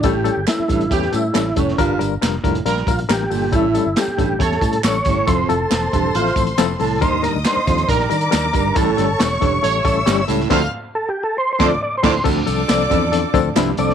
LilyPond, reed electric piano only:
\new Staff \with { instrumentName = "Reed electric piano" } { \time 4/4 \key d \minor \tempo 4 = 138 <g cis' e' a'>8 <g cis' e' a'>8 <g cis' e' a'>8 <g cis' e' a'>8 <g cis' e' a'>8 <g cis' e' a'>8 <g cis' e' a'>8 <g cis' e' a'>8 | <g d' f' bes'>8 <g d' f' bes'>8 <g d' f' bes'>8 <g d' f' bes'>8 <g d' f' bes'>8 <g d' f' bes'>8 <g d' f' bes'>8 <g d' f' a'>8 | <g cis' e' a'>8 <g cis' e' a'>8 <g cis' e' a'>8 <g cis' e' a'>8 <g cis' e' a'>8 <g cis' e' a'>8 <g cis' e' a'>8 <g cis' e' g'>8 | <f c' e' a'>8 <f c' e' a'>8 <f c' e' a'>8 <f c' e' a'>8 <f c' e' a'>8 <f c' e' a'>8 <f c' e' a'>8 <f c' e' a'>8 |
<g d' ees' bes'>8 <g d' ees' bes'>8 <g d' ees' bes'>8 <g d' ees' f'>8 <g d' ees' bes'>8 <g d' ees' bes'>8 <g d' ees' bes'>8 <g d' ees' bes'>8 | <g cis' e' a'>8 <g cis' e' a'>8 <g cis' e' a'>8 <g cis' e' a'>8 <g cis' e' a'>8 <g cis' e' a'>8 <g cis' e' g'>8 <g cis' e' a'>8 | <f c' d' a'>8 r2 <f c' d' a'>8 r8 <f c' d' a'>8 | <f c' d' a'>8 <f c' d' a'>8 <f c' d' a'>8 <f c' d' a'>8 <f c' d' a'>8 <f c' d' a'>8 <f c' d' e'>8 <f c' d' a'>8 | }